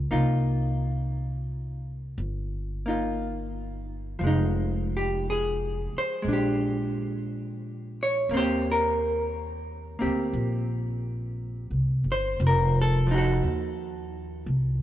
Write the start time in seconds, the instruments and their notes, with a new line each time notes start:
Already playing: hollow-body jazz guitar B3 D#4 F4
0.11 upright bass C2, hollow-body jazz guitar A#3 D#4 F4
2.18 upright bass G1
2.86 hollow-body jazz guitar A#3 D#4 F4
4.19 upright bass F1, hollow-body jazz guitar F3
4.24 hollow-body jazz guitar G#3 D#4
4.97 hollow-body jazz guitar G4
5.30 hollow-body jazz guitar G#4
5.93 muted upright bass stroke
5.98 hollow-body jazz guitar C5
6.22 upright bass A#1, hollow-body jazz guitar G#3
6.28 hollow-body jazz guitar D4
6.33 hollow-body jazz guitar G4
8.03 hollow-body jazz guitar C#5
8.29 upright bass D#2, hollow-body jazz guitar A#3
8.34 hollow-body jazz guitar C4 G4 C5
8.72 hollow-body jazz guitar A#4
9.99 upright bass D2, hollow-body jazz guitar A#3 C4 G4
10.33 upright bass A#1
11.71 upright bass C2
12.04 upright bass G1
12.12 hollow-body jazz guitar C5
12.40 upright bass F1
12.47 hollow-body jazz guitar A#4
12.82 hollow-body jazz guitar A4
13.07 hollow-body jazz guitar F3
13.11 hollow-body jazz guitar D#4 F#4
13.18 hollow-body jazz guitar A4
13.43 upright bass D#2
14.46 upright bass C2